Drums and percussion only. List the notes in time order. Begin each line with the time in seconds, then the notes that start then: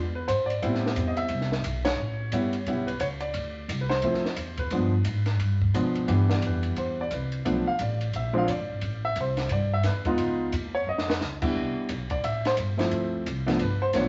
0.28 kick, hi-hat pedal, ride
0.50 ride
0.63 kick, ride
0.75 snare
0.86 snare
0.96 kick, hi-hat pedal, ride
1.17 ride
1.28 kick, ride
1.41 snare
1.52 snare
1.64 kick, hi-hat pedal, ride
1.85 snare, ride
2.32 kick, hi-hat pedal, ride
2.53 ride
2.66 kick, ride
2.88 ride
3.00 kick, hi-hat pedal, ride
3.20 ride
3.34 kick, ride
3.69 kick, hi-hat pedal, ride
3.90 snare
4.02 kick, ride
4.14 snare
4.25 snare
4.36 kick, hi-hat pedal, ride
4.57 kick, ride
4.70 kick, ride
5.04 kick, hi-hat pedal, ride
5.26 snare, ride
5.39 kick, ride
5.61 kick
5.74 kick, hi-hat pedal, ride
5.95 ride
6.08 kick, ride
6.30 snare
6.42 kick, hi-hat pedal, ride
6.63 ride
6.76 kick, ride
7.11 kick, hi-hat pedal, ride
7.32 ride
7.45 kick, ride
7.79 kick, hi-hat pedal, ride
8.01 ride
8.13 kick, ride
8.48 kick, hi-hat pedal, ride
8.81 kick, ride
9.16 kick, hi-hat pedal, ride
9.37 snare, ride
9.49 kick, ride
9.83 kick, snare, hi-hat pedal, ride
10.05 kick, ride
10.18 kick, ride
10.52 kick, hi-hat pedal, ride
10.98 snare
11.10 snare
11.21 snare, hi-hat pedal
11.42 kick, crash
11.55 kick
11.89 kick, hi-hat pedal, ride
12.10 kick, ride
12.24 kick, ride
12.45 snare, ride
12.57 kick, hi-hat pedal, ride
12.79 snare, ride
12.91 kick, ride
13.26 kick, hi-hat pedal, ride
13.48 snare, ride
13.59 kick, ride
13.93 kick, snare, hi-hat pedal, ride